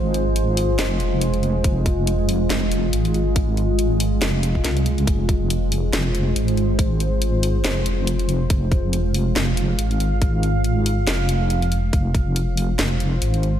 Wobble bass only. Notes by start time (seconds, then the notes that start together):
Already playing: G#1
0.79 F1
1.64 F1
2.50 F1
2.93 G#1
4.22 F1
4.64 C2
5.07 F1
5.93 F1
6.36 G#1
7.64 F1
8.50 F1
9.36 F1
9.79 G#1
11.07 F1
11.93 F1
12.79 F1
13.22 G#1